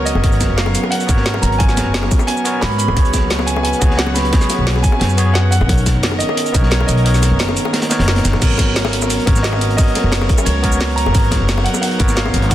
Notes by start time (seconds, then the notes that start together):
Already playing: C#2 F#3 B3 C#4 F#4 A#4 C#5
0.05 D#5, closed hi-hat, shaker
0.15 G#1, high bongo
0.21 B3 F#4 A#4, kick, closed hi-hat
0.26 C#5
0.32 closed hi-hat, shaker
0.40 kick, snare, closed hi-hat, high bongo, shaker
0.49 F#1
0.56 F5, snare, closed hi-hat
0.66 snare, high bongo
0.75 closed hi-hat, shaker
0.83 high bongo
0.91 F#5, closed hi-hat
1.00 closed hi-hat, shaker
1.06 G#1 B3 F#4 A#4, kick, closed hi-hat, shaker
1.11 C#5
1.17 snare
1.26 snare, closed hi-hat
1.34 high bongo
1.42 G#1 A#5, closed hi-hat, shaker
1.52 closed hi-hat
1.58 B3 F#4 A#4 G#5, kick, closed hi-hat
1.62 C#5
1.69 snare, closed hi-hat, shaker
1.77 snare, closed hi-hat, high bongo, shaker
1.85 F#1
1.94 snare, closed hi-hat
2.03 snare, high bongo
2.11 kick, closed hi-hat, open hi-hat, shaker
2.19 high bongo, shaker
2.27 G#5, closed hi-hat
2.37 shaker
2.44 B3 F#4 A#4 C#5, closed hi-hat, shaker
2.61 G#2 B5, snare, closed hi-hat
2.72 closed hi-hat
2.78 B5, closed hi-hat, shaker
2.88 F#1, high bongo
2.94 C#2 F#3 B3 C#4 F#4 G#4 B4, kick, closed hi-hat
2.99 C#5
3.05 closed hi-hat, shaker
3.14 kick, snare, closed hi-hat, high bongo, shaker
3.30 snare, closed hi-hat
3.39 snare, high bongo
3.47 G#5, closed hi-hat, shaker
3.56 high bongo
3.63 G#5, closed hi-hat
3.73 closed hi-hat, shaker
3.79 C#2 B3 F#4 G#4, kick, closed hi-hat, shaker
3.84 C#5
3.91 snare
3.97 F#5, snare, closed hi-hat
4.07 high bongo
4.15 B5, snare, closed hi-hat, shaker
4.25 closed hi-hat
4.31 B3 F#4 G#4, kick, snare, closed hi-hat
4.35 C#5
4.41 snare, closed hi-hat, shaker
4.50 snare, closed hi-hat, high bongo, shaker
4.58 B1
4.67 snare, closed hi-hat
4.76 snare, high bongo
4.83 G#5, kick, closed hi-hat, open hi-hat, shaker
4.92 high bongo
5.00 F#2 G#5, snare, closed hi-hat
5.10 shaker
5.17 B3 F#4 G#4 C#5, closed hi-hat, shaker
5.34 F#5, snare, closed hi-hat
5.51 D#3 A#4 F#5, closed hi-hat, shaker
5.61 B1, high bongo
5.67 B3 D#4 A#4, kick, closed hi-hat
5.72 C#5
5.78 closed hi-hat, shaker
5.86 kick, snare, closed hi-hat, high bongo, shaker
5.95 F#1
6.03 snare, closed hi-hat
6.11 snare, high bongo
6.19 D#5, closed hi-hat, shaker
6.29 high bongo
6.37 closed hi-hat
6.46 closed hi-hat, shaker
6.52 B1 B3 D#4 A#4, kick, closed hi-hat, shaker
6.57 C#5
6.63 snare
6.70 C#5, snare, closed hi-hat
6.80 high bongo
6.87 B1 D#5, closed hi-hat, shaker
6.97 closed hi-hat
7.03 B3 D#4 A#4, closed hi-hat
7.08 C#5
7.14 snare, closed hi-hat, shaker
7.22 snare, closed hi-hat, high bongo, shaker
7.31 F#1
7.39 snare, closed hi-hat
7.48 snare, high bongo
7.57 closed hi-hat, open hi-hat, shaker
7.65 high bongo
7.73 snare, closed hi-hat
7.82 snare, closed hi-hat, shaker
7.90 B3 D#4 A#4 C#5, snare, closed hi-hat, shaker
7.99 F#1, snare, closed hi-hat
8.07 snare, closed hi-hat
8.16 snare, closed hi-hat
8.25 F#1, snare, closed hi-hat, shaker
8.33 B1, snare, high bongo
8.39 G#1 F#3 B3 C#4 F#4 A#4, kick, closed hi-hat, ride, crash, shaker
8.44 C#5
8.50 closed hi-hat
8.58 kick, snare, closed hi-hat, ride, high bongo, shaker
8.76 snare, closed hi-hat, ride, shaker
8.85 snare, high bongo
8.93 closed hi-hat, ride
9.02 high bongo, shaker
9.10 closed hi-hat, ride, shaker
9.20 closed hi-hat
9.26 G#1 B3 F#4 A#4 C#5, kick, closed hi-hat, ride
9.36 snare, shaker
9.43 D#5, snare, closed hi-hat, ride, shaker
9.53 high bongo
9.61 closed hi-hat, ride, shaker
9.70 closed hi-hat
9.76 B3 F#4 A#4 D#5, kick, closed hi-hat, ride, shaker
9.81 C#5
9.88 closed hi-hat
9.95 snare, closed hi-hat, ride, high bongo, shaker
10.04 F#1
10.12 snare, closed hi-hat, ride, shaker
10.21 snare, high bongo
10.29 kick, closed hi-hat, open hi-hat, ride
10.38 high bongo, shaker
10.45 C#2 C#5, closed hi-hat, ride, shaker
10.62 B3 F#4 A#4 C#5, kick, closed hi-hat, ride
10.72 shaker
10.81 snare, closed hi-hat, ride, shaker
10.89 closed hi-hat
10.96 A#5, closed hi-hat, ride, shaker
11.06 G#1, high bongo
11.12 B3 D#4 F#4 A#4, kick, closed hi-hat, ride, shaker
11.17 C#5
11.23 closed hi-hat
11.31 kick, snare, closed hi-hat, ride, high bongo, shaker
11.40 F#1
11.49 snare, closed hi-hat, ride, shaker
11.58 snare, high bongo
11.64 F#5, closed hi-hat, ride
11.74 high bongo, shaker
11.82 F#5, closed hi-hat, ride, shaker
11.91 closed hi-hat
11.99 G#1 B3 F#4 A#4 C#5, kick, closed hi-hat, ride
12.08 snare, shaker
12.15 F5, snare, closed hi-hat, ride, shaker
12.26 high bongo
12.34 G#1, closed hi-hat, ride, shaker
12.42 closed hi-hat
12.49 B3 F#4 F#5, kick, closed hi-hat, ride, shaker